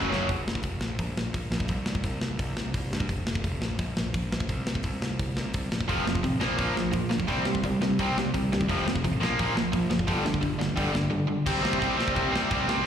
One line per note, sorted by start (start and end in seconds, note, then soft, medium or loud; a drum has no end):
0.09 0.26 F#1 medium
0.09 0.27 F#2 medium
0.09 0.27 C#3 medium
0.09 0.27 F#3 loud
0.09 snare loud
0.29 0.45 F1 medium
0.29 kick loud
0.29 open hi-hat medium
0.47 0.63 F1 medium
0.47 snare loud
0.55 kick medium
0.63 0.80 F1 medium
0.63 kick medium
0.63 open hi-hat medium
0.81 0.98 A#1 medium
0.81 snare loud
0.99 1.15 A#1 medium
0.99 kick loud
0.99 open hi-hat medium
1.17 1.33 A#1 medium
1.17 snare loud
1.34 1.50 A#1 medium
1.34 kick loud
1.34 open hi-hat medium
1.51 1.67 A#1 medium
1.51 snare loud
1.60 kick medium
1.68 2.01 C2 medium
1.68 kick medium
1.68 open hi-hat medium
1.86 snare loud
1.95 kick medium
2.04 2.20 C2 medium
2.04 kick medium
2.04 open hi-hat medium
2.21 2.37 C2 medium
2.21 snare loud
2.39 2.55 C2 medium
2.39 kick loud
2.39 open hi-hat medium
2.57 2.72 C2 medium
2.57 snare loud
2.74 2.90 C2 medium
2.74 kick loud
2.74 open hi-hat medium
2.91 3.07 G2 medium
2.91 snare loud
3.00 kick medium
3.09 3.25 F1 medium
3.09 kick medium
3.09 open hi-hat medium
3.27 3.43 F1 medium
3.27 snare loud
3.35 kick medium
3.44 3.60 F1 medium
3.44 kick medium
3.44 open hi-hat medium
3.62 3.78 A#1 medium
3.62 snare loud
3.79 3.95 A#1 medium
3.79 kick loud
3.79 open hi-hat medium
3.96 4.12 A#1 medium
3.96 snare loud
4.14 4.30 A#1 medium
4.14 kick loud
4.14 open hi-hat medium
4.32 4.48 A#1 medium
4.32 snare loud
4.40 kick medium
4.49 4.81 C2 medium
4.49 kick medium
4.49 open hi-hat soft
4.67 snare loud
4.75 kick medium
4.83 5.00 C2 medium
4.83 kick medium
4.83 open hi-hat medium
5.02 5.18 C2 medium
5.02 snare loud
5.19 5.35 C2 medium
5.19 kick loud
5.19 open hi-hat medium
5.37 5.53 C2 medium
5.37 snare medium
5.54 5.70 C2 medium
5.54 kick loud
5.54 open hi-hat medium
5.71 5.87 A#1 medium
5.71 snare loud
5.80 kick medium
5.88 6.05 F1 medium
5.88 6.04 F2 medium
5.88 6.05 C3 medium
5.88 6.06 F3 medium
5.88 kick medium
5.88 open hi-hat medium
6.05 6.23 F1 medium
6.05 6.21 F2 medium
6.05 6.22 C3 medium
6.05 snare loud
6.15 kick medium
6.23 6.40 A1 medium
6.23 6.39 F2 medium
6.23 6.39 C3 medium
6.23 kick medium
6.23 open hi-hat medium
6.40 6.56 A#1 medium
6.40 6.56 A#2 medium
6.40 6.57 F3 medium
6.40 6.57 A#3 loud
6.40 snare loud
6.57 6.75 A#1 medium
6.57 6.73 A#2 medium
6.57 6.73 F3 medium
6.57 6.75 A#3 medium
6.57 kick loud
6.57 open hi-hat medium
6.74 6.92 A#1 medium
6.74 6.91 A#2 medium
6.74 6.91 F3 medium
6.74 snare loud
6.92 7.10 A#1 medium
6.92 7.08 A#2 medium
6.92 7.09 F3 medium
6.92 kick loud
6.92 open hi-hat medium
7.10 7.27 A#1 medium
7.10 7.26 A#2 medium
7.10 7.26 F3 medium
7.10 snare loud
7.20 kick medium
7.28 7.60 C2 medium
7.28 7.45 C3 medium
7.28 7.45 G3 medium
7.28 7.45 C4 medium
7.28 kick medium
7.28 open hi-hat medium
7.45 7.62 C3 medium
7.45 7.62 G3 medium
7.45 snare loud
7.55 kick medium
7.63 7.79 C2 medium
7.63 7.79 C3 medium
7.63 7.80 G3 medium
7.63 kick medium
7.63 open hi-hat medium
7.80 7.97 C2 medium
7.80 7.97 C3 medium
7.80 7.97 G3 medium
7.80 snare loud
7.99 8.15 C2 medium
7.99 8.15 C3 medium
7.99 8.16 G3 loud
7.99 8.16 C4 loud
7.99 kick loud
7.99 open hi-hat medium
8.17 8.33 C2 medium
8.17 8.32 C3 medium
8.17 8.32 G3 medium
8.17 snare loud
8.34 8.50 C2 medium
8.34 8.49 C3 medium
8.34 8.50 G3 medium
8.34 kick loud
8.34 open hi-hat medium
8.52 8.68 D#2 medium
8.52 8.67 C3 medium
8.52 8.68 G3 medium
8.52 snare loud
8.61 kick medium
8.69 8.85 F1 medium
8.69 8.85 F2 medium
8.69 8.85 C3 medium
8.69 8.86 F3 loud
8.69 kick medium
8.69 open hi-hat medium
8.86 9.02 F1 medium
8.86 9.02 F2 medium
8.86 9.02 C3 medium
8.86 snare loud
8.96 kick medium
9.04 9.20 A1 medium
9.04 9.19 F2 medium
9.04 9.19 C3 medium
9.04 kick loud
9.04 open hi-hat medium
9.20 9.36 A#1 medium
9.20 9.37 A#2 medium
9.20 9.37 F3 loud
9.20 9.37 A#3 loud
9.20 snare loud
9.39 9.54 A#1 medium
9.39 9.54 A#2 medium
9.39 9.54 F3 medium
9.39 9.55 A#3 medium
9.39 kick loud
9.39 open hi-hat medium
9.55 9.71 A#1 medium
9.55 9.71 A#2 medium
9.55 9.71 F3 medium
9.55 snare loud
9.72 9.89 A#1 medium
9.72 9.88 A#2 medium
9.72 9.88 F3 medium
9.72 kick loud
9.72 open hi-hat medium
9.89 10.06 F#1 medium
9.89 10.06 A#2 medium
9.89 10.06 F3 medium
9.89 snare loud
9.99 kick medium
10.08 10.40 G1 medium
10.08 10.23 G2 medium
10.08 10.23 D3 medium
10.08 10.24 G3 medium
10.08 kick medium
10.08 open hi-hat medium
10.24 10.40 G2 medium
10.24 10.40 D3 medium
10.24 snare loud
10.34 kick medium
10.41 10.59 G1 medium
10.41 10.58 G2 medium
10.41 10.58 D3 medium
10.41 kick medium
10.41 open hi-hat soft
10.59 10.75 G1 medium
10.59 10.74 G2 medium
10.59 10.75 D3 medium
10.59 snare loud
10.76 10.92 G1 medium
10.76 10.92 G2 medium
10.76 10.92 D3 loud
10.76 10.94 G3 loud
10.76 kick loud
10.76 open hi-hat medium
10.93 11.10 G1 medium
10.93 11.09 G2 medium
10.93 11.09 D3 medium
10.93 snare loud
11.10 11.26 G2 medium
11.10 11.26 D3 medium
11.27 11.44 G2 medium
11.27 11.44 D3 medium
11.46 11.61 C2 medium
11.46 11.61 C3 loud
11.46 11.62 G3 loud
11.46 11.63 C4 loud
11.46 kick loud
11.46 crash loud
11.46 crash medium
11.62 11.78 C2 medium
11.62 11.78 C3 medium
11.62 11.79 G3 loud
11.62 11.79 C4 medium
11.62 snare loud
11.73 kick loud
11.79 11.96 C2 medium
11.79 11.95 C3 medium
11.79 11.96 G3 medium
11.79 11.97 C4 medium
11.79 kick loud
11.83 crash medium
11.96 12.12 C2 loud
11.96 12.14 C3 medium
11.96 12.14 G3 loud
11.96 12.15 C4 loud
12.00 snare loud
12.08 kick medium
12.15 12.31 C2 medium
12.15 12.29 C3 medium
12.15 12.31 G3 medium
12.15 12.32 C4 medium
12.15 kick loud
12.15 crash medium
12.31 12.47 C2 medium
12.31 12.49 C3 loud
12.31 12.50 G3 medium
12.31 12.52 C4 loud
12.36 snare loud
12.50 12.65 C2 medium
12.50 12.66 C3 medium
12.50 12.68 G3 loud
12.50 12.69 C4 loud
12.50 kick loud
12.50 crash medium
12.67 12.82 C2 medium
12.67 12.83 C3 medium
12.67 12.84 G3 medium
12.67 12.86 C4 loud
12.67 snare loud